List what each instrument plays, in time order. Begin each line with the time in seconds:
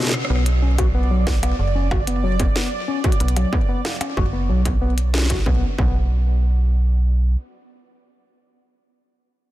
Already playing: analog synth pad C#3 C#4 F4 G#4 B4
0.00 snare
0.02 snare
0.05 snare
0.07 snare
0.09 snare
0.12 cross-stick, snare
0.25 cross-stick
0.30 fm bass B1, tine electric piano B3, synth texture D5
0.35 cross-stick
0.46 closed hi-hat
0.62 tine electric piano C#4
0.78 tine electric piano F#4, kick, closed hi-hat, percussion blips
0.95 tine electric piano B3
1.11 tine electric piano F#3
1.27 tine electric piano B3, kick, snare, percussion blips
1.43 tine electric piano B3, closed hi-hat, percussion blips
1.59 fm bass F#1
1.75 tine electric piano C#4
1.91 tine electric piano F#4, kick, percussion blips
2.07 tine electric piano B3, closed hi-hat
2.24 tine electric piano F#3
2.40 tine electric piano B3, kick, closed hi-hat
2.56 tine electric piano B3, snare
2.88 tine electric piano C#4
3.04 tine electric piano F#4, kick, closed hi-hat
3.12 closed hi-hat
3.20 fm bass B1, tine electric piano B3, closed hi-hat
3.28 closed hi-hat
3.36 tine electric piano F#3, closed hi-hat, percussion blips
3.53 tine electric piano B3, kick
3.69 tine electric piano B3
3.85 snare, percussion blips
3.87 percussion blips
3.89 percussion blips
3.92 percussion blips
3.94 percussion blips
3.96 percussion blips
3.99 closed hi-hat, percussion blips
4.01 tine electric piano C#4, percussion blips
4.17 fm bass F#1, tine electric piano F#4, kick
4.33 tine electric piano B3
4.49 fm bass B1, tine electric piano F#3
4.65 tine electric piano B3, kick, closed hi-hat
4.81 tine electric piano B3
4.98 closed hi-hat
5.14 tine electric piano C#4, snare
5.18 snare
5.22 snare
5.26 tine electric piano F#4, snare
5.30 kick, snare, closed hi-hat
5.34 snare
5.38 snare
5.42 tine electric piano B3, snare
5.46 fm bass B1, kick
5.78 fm bass B1, tine electric piano B3, kick